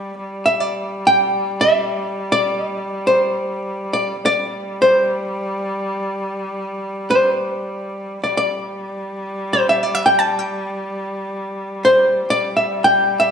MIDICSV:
0, 0, Header, 1, 3, 480
1, 0, Start_track
1, 0, Tempo, 500000
1, 12780, End_track
2, 0, Start_track
2, 0, Title_t, "Hollow-body jazz guitar"
2, 0, Program_c, 0, 26
2, 438, Note_on_c, 0, 76, 78
2, 579, Note_off_c, 0, 76, 0
2, 579, Note_on_c, 0, 74, 79
2, 1026, Note_on_c, 0, 79, 90
2, 1036, Note_off_c, 0, 74, 0
2, 1545, Note_on_c, 0, 76, 93
2, 1559, Note_off_c, 0, 79, 0
2, 2224, Note_off_c, 0, 76, 0
2, 2228, Note_on_c, 0, 74, 81
2, 2943, Note_off_c, 0, 74, 0
2, 2947, Note_on_c, 0, 72, 74
2, 3739, Note_off_c, 0, 72, 0
2, 3777, Note_on_c, 0, 74, 75
2, 4074, Note_off_c, 0, 74, 0
2, 4086, Note_on_c, 0, 74, 90
2, 4621, Note_off_c, 0, 74, 0
2, 4625, Note_on_c, 0, 72, 66
2, 6196, Note_off_c, 0, 72, 0
2, 6821, Note_on_c, 0, 72, 67
2, 7857, Note_off_c, 0, 72, 0
2, 7906, Note_on_c, 0, 74, 59
2, 8028, Note_off_c, 0, 74, 0
2, 8039, Note_on_c, 0, 74, 77
2, 9147, Note_off_c, 0, 74, 0
2, 9151, Note_on_c, 0, 72, 73
2, 9301, Note_off_c, 0, 72, 0
2, 9305, Note_on_c, 0, 76, 75
2, 9435, Note_off_c, 0, 76, 0
2, 9435, Note_on_c, 0, 74, 76
2, 9548, Note_off_c, 0, 74, 0
2, 9548, Note_on_c, 0, 76, 73
2, 9653, Note_off_c, 0, 76, 0
2, 9655, Note_on_c, 0, 79, 78
2, 9780, Note_off_c, 0, 79, 0
2, 9780, Note_on_c, 0, 81, 82
2, 9972, Note_off_c, 0, 81, 0
2, 9972, Note_on_c, 0, 79, 86
2, 11090, Note_off_c, 0, 79, 0
2, 11374, Note_on_c, 0, 72, 80
2, 11811, Note_on_c, 0, 74, 91
2, 11825, Note_off_c, 0, 72, 0
2, 12059, Note_off_c, 0, 74, 0
2, 12063, Note_on_c, 0, 76, 66
2, 12329, Note_on_c, 0, 79, 77
2, 12348, Note_off_c, 0, 76, 0
2, 12651, Note_off_c, 0, 79, 0
2, 12669, Note_on_c, 0, 76, 81
2, 12780, Note_off_c, 0, 76, 0
2, 12780, End_track
3, 0, Start_track
3, 0, Title_t, "Horsehead fiddle"
3, 0, Program_c, 1, 110
3, 0, Note_on_c, 1, 55, 75
3, 171, Note_off_c, 1, 55, 0
3, 181, Note_on_c, 1, 55, 65
3, 4033, Note_off_c, 1, 55, 0
3, 4038, Note_on_c, 1, 55, 66
3, 7916, Note_off_c, 1, 55, 0
3, 7921, Note_on_c, 1, 55, 62
3, 11790, Note_off_c, 1, 55, 0
3, 11795, Note_on_c, 1, 55, 67
3, 12780, Note_off_c, 1, 55, 0
3, 12780, End_track
0, 0, End_of_file